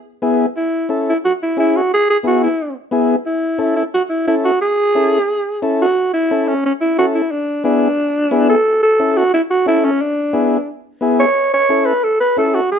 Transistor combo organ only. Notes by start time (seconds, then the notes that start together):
0.22 B3 E4 G#4
0.89 C#4 E4 A4
1.57 C#4 E4 G#4
2.23 B3 E4 G#4
2.91 B3 E4 G#4
3.58 C#4 E4 A4
4.27 C#4 E4 A4
4.95 C#4 E4 A4
5.62 C#4 E4 A4
6.31 C#4 E4 A4
6.98 C#4 E4 A4
7.64 B3 E4 G#4
8.31 B3 E4 G#4
8.99 C#4 E4 A4
9.66 C#4 E4 A4
10.33 B3 E4 G#4
11.01 B3 E4 G#4
11.69 C#4 E4 A4
12.37 C#4 E4 A4